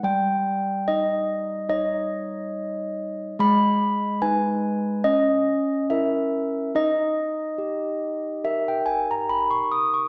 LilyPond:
\new Staff \with { instrumentName = "Handbells" } { \time 4/4 \key dis \phrygian \tempo 4 = 71 << { g''4 dis''4 dis''2 | b''4 gis''4 dis''4 e''4 | dis''2 e''16 g''16 gis''16 ais''16 b''16 cis'''16 dis'''16 cis'''16 | } \\ { g4 dis'4 <dis' cis''>2 | gis4 <dis' b'>4 cis'4 <e' ais'>4 | dis'4 g'4 <g' ais'>2 | } >> }